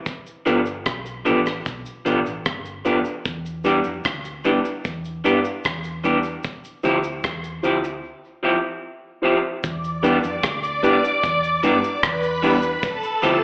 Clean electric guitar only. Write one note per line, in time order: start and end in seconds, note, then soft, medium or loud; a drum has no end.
0.46 0.59 F3 medium
0.46 0.59 B3 medium
0.46 0.59 D4 medium
0.46 0.60 G4 medium
1.25 1.39 F3 medium
1.25 1.39 B3 medium
1.25 1.39 D4 medium
1.25 1.39 G4 medium
1.46 muted clean electric guitar stroke soft
2.05 2.19 F3 medium
2.05 2.19 B3 medium
2.05 2.19 D4 medium
2.05 2.19 G4 medium
2.85 2.98 F3 medium
2.85 2.99 B3 medium
2.85 2.99 D4 medium
2.85 2.99 G4 medium
3.65 3.78 G3 medium
3.65 3.78 B3 medium
3.65 3.79 D4 medium
3.65 3.79 G4 loud
4.45 4.58 G3 medium
4.45 4.58 B3 medium
4.45 4.58 D4 medium
4.45 4.59 G4 medium
4.65 muted clean electric guitar stroke soft
5.24 5.38 G3 medium
5.24 5.38 B3 medium
5.24 5.38 D4 medium
5.24 5.38 G4 medium
6.04 6.17 G3 medium
6.04 6.18 B3 medium
6.04 6.18 D4 medium
6.04 6.18 G4 medium
6.84 6.97 F3 medium
6.84 6.97 C4 medium
6.84 6.98 E4 medium
6.84 6.98 G4 medium
7.64 7.77 F3 medium
7.64 7.77 C4 medium
7.64 7.78 E4 medium
7.64 7.78 G4 medium
7.84 muted clean electric guitar stroke soft
8.43 8.57 F3 medium
8.43 8.57 C4 medium
8.43 8.57 E4 medium
8.43 8.57 G4 medium
9.23 9.37 F3 medium
9.23 9.37 C4 medium
9.23 9.37 E4 loud
9.23 9.37 G4 medium
10.03 10.16 G3 medium
10.03 10.17 B3 medium
10.03 10.17 D4 medium
10.03 10.17 G4 loud
10.83 10.96 G3 medium
10.83 10.96 B3 medium
10.83 10.97 D4 medium
10.83 10.97 G4 medium
11.03 muted clean electric guitar stroke soft
11.63 11.76 G3 medium
11.63 11.76 B3 medium
11.63 11.77 D4 medium
11.63 11.77 G4 medium
12.42 12.56 G3 medium
12.42 12.56 B3 medium
12.42 12.56 D4 medium
12.42 12.57 G4 loud
13.22 13.36 F3 medium
13.22 13.36 C4 loud
13.22 13.36 E4 loud
13.22 13.36 G4 loud